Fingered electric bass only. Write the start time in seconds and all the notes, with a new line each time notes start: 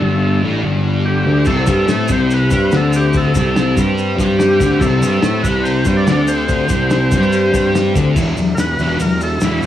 0.00 G1
0.43 A1
0.63 G1
1.26 D2
1.47 C2
1.68 G2
1.88 A2
2.10 C2
2.51 G2
2.72 D2
3.36 C2
3.77 G2
4.19 G2
4.60 D2
4.81 C2
5.01 G2
5.23 A2
5.44 C2
5.86 G2
6.07 D2
6.70 C2
7.12 G2
7.54 G2
7.95 D2
8.16 E1
8.37 E1
8.58 E1
8.79 E1
9.00 E1
9.42 E1
9.63 E1